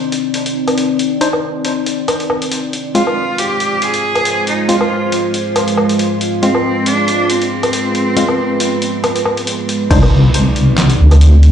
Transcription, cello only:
2.95 F4
3.39 G4
3.82 G#4
4.48 D#4
4.69 F4
6.43 C4
6.87 D4
7.30 C4

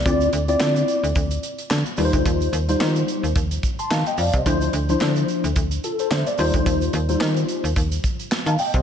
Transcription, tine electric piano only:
0.05 C4 E4 F4 D5
0.48 C4 E4 F4 D5
1.97 G3 D#4 F4 B4
2.05 C5
2.68 G3 D#4 F4 C5
3.79 A5 C6
3.91 F5 A5
4.07 D#5 G5
4.19 D5 F5
4.35 C5 D#5
4.46 F3 D4 E4 C5
4.89 F3 D4 E4 C5
5.84 F4 A4
6.00 A4 C5
6.12 C5 E5
6.27 D5
6.39 G3 D#4 F4 C5
7.09 G3 D#4 F4 C5
8.47 F5 A5
8.59 D#5 G5
8.75 C5 D#5

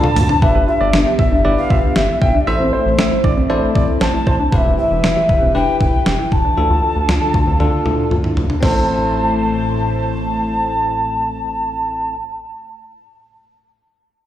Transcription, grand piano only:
0.55 B4
0.81 D5
1.19 E5
1.45 D5
1.70 E5
2.22 G5
2.47 E5
2.73 C5
2.99 E5
3.24 D5
3.50 C5
3.76 D5
4.01 C5
4.27 C5
8.63 C5

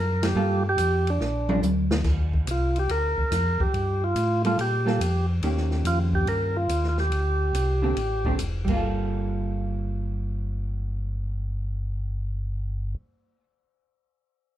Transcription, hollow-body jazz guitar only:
0.36 G3 A#3 F4 A4
1.49 F3 G#3 D4
4.45 G3 A#3 F4 A4
4.86 G3 A#3 F4 A4
5.44 D#3 A#3 C#4 G4
7.82 D3 A3 C4 G4
8.26 D3 A3 C4 G4
8.65 G3
8.69 A#3
8.73 F4 A4

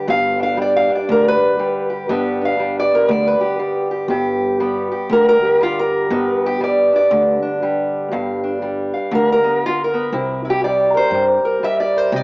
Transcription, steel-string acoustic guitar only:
Already playing: G3
0.07 G2 F5
0.40 D4 F5
0.57 G3
0.62 D5
0.76 F5
0.89 D4
0.95 D5
1.09 D3 A#4
1.28 B4
1.59 G3
1.90 G4
2.09 G2 G3 B3 D4 G4
2.41 D4 F5
2.59 G3
2.80 D5
2.91 B3 A#4
3.08 D3 D5
3.28 B4
3.41 G4
3.59 G3
3.91 G4
4.10 G2 G4
4.60 G3 B3
4.92 G4
5.11 D3 A#4
5.29 A#4
5.44 G4
5.61 G3 F4
5.79 A#4
6.11 G2 B3
6.46 G4
6.61 G3 D5
6.93 D4 D5
7.11 D3
7.42 D4
7.62 G3
8.12 G2 F5
8.44 D4
8.62 G3
8.94 F5
9.11 D3 A#4
9.32 A#4
9.44 B3
9.66 F4
9.84 A#4
9.94 B3
10.13 C3 E4
10.45 E4
10.50 G4
10.64 G3 D5
10.94 A#4 C5
11.14 G3
11.45 A#4
11.63 G3 E5
11.80 D5
11.96 A#4 C5
12.13 C3 D5

